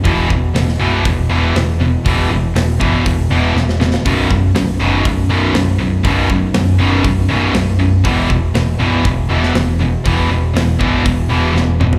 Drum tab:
HH |o---o---o---o---|o---o---o-------|o---o---o---o---|o---o---o---o---|
SD |----oo------o---|----o-------oooo|----o-------o---|----o-------o---|
T2 |----------------|----------------|----------------|----------------|
FT |----------------|----------------|----------------|----------------|
BD |o-o-----o-------|o-----o-o-------|o-o-----o-------|o-o-----o-------|

HH |o---o---o---o---|o---o---o-------|
SD |----o------oo---|----o-------o---|
T2 |----------------|--------------o-|
FT |----------------|---------------o|
BD |o-o-----o-------|o-----o-o-------|